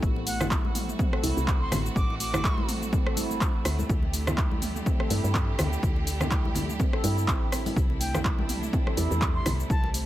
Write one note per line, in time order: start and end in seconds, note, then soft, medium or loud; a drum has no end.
0.03 0.94 A1 medium
0.03 7.73 A3 medium
0.03 3.86 C4 medium
0.03 3.86 F#4 medium
0.03 kick loud
0.03 cabasa soft
0.16 muted conga medium
0.27 0.39 A3 medium
0.27 0.46 F#5 loud
0.27 open hi-hat loud
0.27 cabasa loud
0.40 0.50 E4 medium
0.40 cross-stick loud
0.40 low conga loud
0.40 cabasa medium
0.51 kick loud
0.51 clap loud
0.51 muted conga soft
0.51 cabasa soft
0.65 high conga medium
0.75 0.87 A3 medium
0.75 mid tom medium
0.75 open hi-hat loud
0.75 cabasa medium
0.89 mid tom medium
0.89 cabasa medium
0.99 1.11 C4 loud
0.99 kick loud
0.99 mid tom medium
0.99 muted conga medium
0.99 cabasa soft
1.13 1.22 A4 loud
1.13 cross-stick medium
1.23 1.33 C2 medium
1.23 1.36 E4 loud
1.23 open hi-hat loud
1.23 high conga medium
1.23 cabasa medium
1.37 1.66 C2 medium
1.37 1.43 A3 medium
1.37 muted conga soft
1.37 cabasa medium
1.48 kick loud
1.48 clap loud
1.48 cabasa soft
1.61 1.79 C6 loud
1.72 1.89 A1 loud
1.72 cross-stick medium
1.72 open hi-hat medium
1.72 muted conga medium
1.72 low conga loud
1.72 cabasa medium
1.86 cabasa medium
1.96 2.94 A1 loud
1.96 2.15 D6 medium
1.96 kick loud
1.96 cabasa soft
2.10 muted conga medium
2.20 2.32 A3 medium
2.20 2.68 D6 loud
2.20 open hi-hat medium
2.20 cabasa loud
2.33 2.44 E4 medium
2.33 cross-stick loud
2.33 low conga loud
2.33 cabasa medium
2.44 kick loud
2.44 clap loud
2.44 muted conga soft
2.44 high conga medium
2.44 cabasa soft
2.58 high conga loud
2.68 2.81 A3 medium
2.68 mid tom medium
2.68 open hi-hat medium
2.68 cabasa loud
2.82 mid tom medium
2.82 cabasa medium
2.93 3.65 F#1 medium
2.93 3.05 C4 loud
2.93 kick loud
2.93 muted conga medium
2.93 high conga medium
2.93 cabasa soft
3.06 3.16 A4 loud
3.06 cross-stick medium
3.16 3.29 E4 loud
3.16 open hi-hat medium
3.16 high conga medium
3.16 cabasa loud
3.31 3.36 A3 medium
3.31 muted conga soft
3.31 cabasa medium
3.41 kick loud
3.41 clap loud
3.41 cabasa soft
3.65 3.83 D2 medium
3.65 cross-stick loud
3.65 open hi-hat medium
3.65 muted conga medium
3.65 cabasa medium
3.79 high conga medium
3.79 cabasa medium
3.89 4.81 D2 loud
3.89 7.73 D3 medium
3.89 10.06 E4 medium
3.89 7.73 G4 medium
3.89 kick loud
3.89 cabasa soft
4.03 muted conga medium
4.13 4.26 A3 medium
4.13 open hi-hat loud
4.13 cabasa loud
4.27 4.37 E4 medium
4.27 cross-stick loud
4.27 low conga loud
4.27 cabasa medium
4.38 kick loud
4.38 clap loud
4.38 muted conga soft
4.38 cabasa soft
4.52 high conga loud
4.62 4.74 A3 medium
4.62 mid tom medium
4.62 open hi-hat medium
4.62 cabasa loud
4.76 mid tom medium
4.76 cabasa medium
4.86 4.98 C4 loud
4.86 kick loud
4.86 mid tom medium
4.86 muted conga medium
4.86 cabasa soft
5.00 5.09 A4 loud
5.00 cross-stick medium
5.10 5.20 G2 medium
5.10 5.23 E4 loud
5.10 open hi-hat medium
5.10 high conga loud
5.10 cabasa loud
5.24 5.54 G2 medium
5.24 5.30 A3 medium
5.24 muted conga soft
5.24 cabasa medium
5.35 kick loud
5.35 clap medium
5.35 cabasa soft
5.59 5.77 D2 loud
5.59 cross-stick loud
5.59 open hi-hat medium
5.59 muted conga soft
5.59 low conga loud
5.59 cabasa medium
5.73 cabasa medium
5.83 6.81 D2 loud
5.83 kick loud
5.83 cabasa soft
5.96 muted conga medium
6.07 6.19 A3 medium
6.07 open hi-hat medium
6.07 cabasa loud
6.20 6.31 E4 medium
6.20 cross-stick medium
6.20 low conga loud
6.20 cabasa medium
6.31 kick loud
6.31 clap loud
6.31 muted conga soft
6.31 high conga medium
6.31 cabasa soft
6.45 high conga medium
6.55 6.68 A3 medium
6.55 mid tom medium
6.55 open hi-hat medium
6.55 low conga medium
6.55 cabasa loud
6.69 mid tom medium
6.69 cabasa medium
6.79 7.03 C2 medium
6.79 6.92 C4 loud
6.79 kick loud
6.79 muted conga soft
6.79 high conga loud
6.79 cabasa soft
6.93 7.03 A4 loud
6.93 cross-stick medium
7.04 7.29 G2 loud
7.04 7.16 E4 loud
7.04 open hi-hat medium
7.04 high conga loud
7.04 cabasa loud
7.17 7.27 E4 medium
7.17 muted conga soft
7.17 cabasa medium
7.28 7.71 A1 medium
7.28 kick loud
7.28 clap medium
7.28 cabasa soft
7.52 7.65 C4 medium
7.52 cross-stick medium
7.52 open hi-hat medium
7.52 muted conga medium
7.52 cabasa medium
7.66 7.75 C4 medium
7.66 open hi-hat soft
7.66 high conga medium
7.66 cabasa medium
7.76 8.68 C2 loud
7.76 10.06 C3 medium
7.76 10.06 G3 medium
7.76 9.68 D4 medium
7.76 kick loud
7.76 cabasa soft
7.90 muted conga soft
8.00 8.13 A3 medium
8.00 8.20 G5 loud
8.00 open hi-hat medium
8.00 cabasa loud
8.14 8.24 E4 medium
8.14 cross-stick medium
8.14 low conga loud
8.14 cabasa medium
8.24 kick loud
8.24 clap loud
8.24 muted conga soft
8.24 cabasa soft
8.39 high conga medium
8.49 8.61 A3 medium
8.49 mid tom loud
8.49 open hi-hat medium
8.49 cabasa loud
8.63 mid tom medium
8.63 cabasa medium
8.73 8.85 C4 loud
8.73 kick loud
8.73 mid tom loud
8.73 muted conga soft
8.73 cabasa soft
8.87 8.96 A4 loud
8.87 cross-stick medium
8.97 9.07 E2 medium
8.97 9.10 E4 loud
8.97 open hi-hat medium
8.97 high conga medium
8.97 cabasa medium
9.11 9.41 E2 medium
9.11 9.17 A3 medium
9.11 muted conga soft
9.11 cabasa medium
9.22 kick loud
9.22 clap loud
9.22 cabasa soft
9.35 9.53 C6 loud
9.46 9.64 C2 loud
9.46 cross-stick medium
9.46 open hi-hat medium
9.46 muted conga soft
9.46 low conga medium
9.46 cabasa medium
9.60 cabasa medium
9.70 10.06 C2 medium
9.70 10.06 C4 medium
9.70 9.89 A5 medium
9.70 kick loud
9.70 cabasa soft
9.84 muted conga medium
9.94 10.06 A3 medium
9.94 open hi-hat medium
9.94 cabasa medium